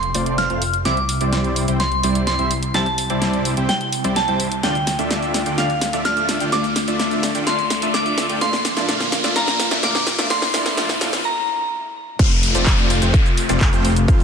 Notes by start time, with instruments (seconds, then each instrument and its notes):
Already playing: detuned saw bass F1, analog synth pad C3 A3 F4, synth bell C6, riser
0.03 closed hi-hat
0.14 detuned saw bass F1, supersaw synth A3 C4 F4 C5 D5, open hi-hat
0.26 closed hi-hat
0.38 synth bell F6, snare, closed hi-hat
0.50 detuned saw bass F1, supersaw synth A3 C4 F4 C5 F5, closed hi-hat
0.62 open hi-hat
0.73 closed hi-hat
0.85 detuned saw bass C2, supersaw synth G3 C4 E4 C5 E5, analog synth pad G3 E4, synth bell D6, snare, closed hi-hat
0.97 closed hi-hat
1.09 open hi-hat
1.21 detuned saw bass C2, supersaw synth G3 C4 E4 C5 D5, closed hi-hat
1.33 snare, closed hi-hat
1.44 closed hi-hat
1.56 open hi-hat
1.68 detuned saw bass C2, supersaw synth G3 C4 E4 C5 G5, closed hi-hat
1.80 synth bell C6, snare, closed hi-hat
1.92 closed hi-hat
2.03 detuned saw bass C2, supersaw synth G3 C4 E4 C5 D5, open hi-hat
2.15 closed hi-hat
2.27 synth bell C6, snare, closed hi-hat
2.39 detuned saw bass C2, supersaw synth G3 C4 E4 C5 E5, closed hi-hat
2.51 open hi-hat
2.63 closed hi-hat
2.74 detuned saw bass C2, supersaw synth G3 C4 E4 C5 E5, synth bell A5, snare, closed hi-hat
2.86 closed hi-hat
2.98 open hi-hat
3.10 detuned saw bass C2, supersaw synth G3 C4 E4 C5 D5, closed hi-hat
3.22 snare, closed hi-hat
3.33 closed hi-hat
3.45 open hi-hat
3.57 detuned saw bass C2, supersaw synth G3 C4 E4 C5 G5, closed hi-hat
3.69 synth bell G5, snare, closed hi-hat
3.81 closed hi-hat
3.92 open hi-hat
4.04 detuned saw bass C2, supersaw synth G3 C4 E4 C5 D5, closed hi-hat
4.16 synth bell A5, snare, closed hi-hat
4.28 detuned saw bass C2, supersaw synth G3 C4 E4 C5 G5, closed hi-hat
4.40 open hi-hat
4.52 closed hi-hat
4.63 detuned saw bass D2, analog synth pad D3 A3 F4, supersaw synth A3 D4 F4 D5 F5, synth bell G5, snare, closed hi-hat, cabasa
4.75 closed hi-hat, cabasa
4.87 snare, open hi-hat, cabasa
4.99 detuned saw bass D2, supersaw synth A3 D4 F4 D5 E5, closed hi-hat, cabasa
5.11 snare, closed hi-hat, cabasa
5.22 closed hi-hat, cabasa
5.34 snare, open hi-hat, cabasa
5.46 detuned saw bass D2, supersaw synth A3 D4 F4 D5 G5, closed hi-hat, cabasa
5.58 detuned saw bass D2, supersaw synth A3 D4 F4 D5 F5, synth bell F5, snare, closed hi-hat, cabasa
5.70 closed hi-hat, cabasa
5.81 snare, open hi-hat, cabasa
5.93 detuned saw bass D2, supersaw synth A3 D4 F4 D5 E5, closed hi-hat, cabasa
6.05 synth bell F6, snare, closed hi-hat, cabasa
6.17 closed hi-hat, cabasa
6.29 snare, open hi-hat, cabasa
6.40 detuned saw bass D2, supersaw synth A3 D4 F4 D5 G5, closed hi-hat, cabasa
6.52 detuned saw bass D2, supersaw synth A3 D4 F4 D5 F5, synth bell D6, snare, closed hi-hat, cabasa
6.64 closed hi-hat, cabasa
6.76 snare, open hi-hat, cabasa
6.88 detuned saw bass D2, supersaw synth A3 D4 F4 D5 E5, closed hi-hat, cabasa
6.99 snare, closed hi-hat, cabasa
7.11 closed hi-hat, cabasa
7.23 snare, open hi-hat, cabasa
7.35 detuned saw bass D2, supersaw synth A3 D4 F4 D5 G5, closed hi-hat, cabasa
7.47 detuned saw bass D2, supersaw synth A3 D4 F4 D5 F5, synth bell C6, snare, closed hi-hat, cabasa
7.59 closed hi-hat, cabasa
7.70 snare, open hi-hat, cabasa
7.82 detuned saw bass D2, supersaw synth A3 D4 F4 D5 E5, closed hi-hat, cabasa
7.94 synth bell D6, snare, closed hi-hat, cabasa
8.06 closed hi-hat, cabasa
8.18 snare, open hi-hat, cabasa
8.29 detuned saw bass D2, supersaw synth A3 D4 F4 D5 G5, closed hi-hat, cabasa
8.41 detuned saw bass A#1, supersaw synth A3 D4 F4 D5 F5, analog synth pad A#3 F4, synth bell C6, snare, closed hi-hat, cabasa
8.53 snare, closed hi-hat, cabasa
8.65 snare, open hi-hat, cabasa
8.77 detuned saw bass A#1, supersaw synth A3 D4 F4 D5 E5, snare, closed hi-hat, cabasa
8.89 detuned saw bass A#1, supersaw synth A3 D4 F4 D5 F5, snare, closed hi-hat, cabasa
9.00 snare, closed hi-hat, cabasa
9.12 snare, open hi-hat, cabasa
9.24 detuned saw bass A#1, supersaw synth A3 D4 F4 D5 E5, snare, closed hi-hat, cabasa
9.36 detuned saw bass A#1, supersaw synth A3 D4 F4 D5 F5, synth bell A#5, snare, closed hi-hat, cabasa
9.48 snare, closed hi-hat, cabasa
9.60 snare, open hi-hat, cabasa
9.71 detuned saw bass A#1, supersaw synth A3 D4 F4 D5 E5, snare, closed hi-hat, cabasa
9.83 detuned saw bass A#1, supersaw synth A3 D4 F4 D5 F5, synth bell D6, snare, closed hi-hat, cabasa
9.95 snare, closed hi-hat, cabasa
10.07 snare, open hi-hat, cabasa
10.18 detuned saw bass A#1, supersaw synth A3 D4 F4 D5 E5, snare, closed hi-hat, cabasa
10.30 detuned saw bass A#1, supersaw synth A3 D4 F4 D5 F5, analog synth pad E4, synth bell C6, snare, closed hi-hat, cabasa
10.42 snare, closed hi-hat, cabasa
10.54 detuned saw bass A#1, supersaw synth A3 D4 F4 D5 F5, snare, open hi-hat, cabasa
10.66 snare, closed hi-hat, cabasa
10.77 detuned saw bass A#1, supersaw synth A3 D4 F4 D5 F5, snare, closed hi-hat, cabasa
10.89 snare, closed hi-hat, cabasa
11.01 detuned saw bass A#1, supersaw synth A3 D4 F4 D5 F5, snare, open hi-hat, cabasa
11.13 snare, closed hi-hat, cabasa
11.25 synth bell A#5
12.19 detuned saw bass F1, analog synth pad C3 A3 F4, supersaw synth A3 C4 F4 C5 F5, kick, closed hi-hat, crash, downlifter, cabasa
12.31 closed hi-hat, cabasa
12.43 open hi-hat
12.55 detuned saw bass F1, supersaw synth A3 C4 F4 C5 D5, closed hi-hat, cabasa
12.66 kick, clap, closed hi-hat, cabasa
12.78 closed hi-hat, cabasa
12.90 open hi-hat
13.02 detuned saw bass F1, supersaw synth A3 C4 F4 C5 G5, closed hi-hat, cabasa
13.14 kick, closed hi-hat, cabasa
13.26 closed hi-hat, cabasa
13.37 open hi-hat
13.49 detuned saw bass F1, supersaw synth A3 C4 F4 C5 D5, closed hi-hat, cabasa
13.61 kick, clap, closed hi-hat, cabasa
13.73 detuned saw bass F1, supersaw synth A3 C4 F4 C5 G5, closed hi-hat, cabasa
13.85 open hi-hat
13.96 closed hi-hat, cabasa
14.08 detuned saw bass F1, supersaw synth A3 C4 F4 C5 F5, kick, closed hi-hat, cabasa
14.20 closed hi-hat, cabasa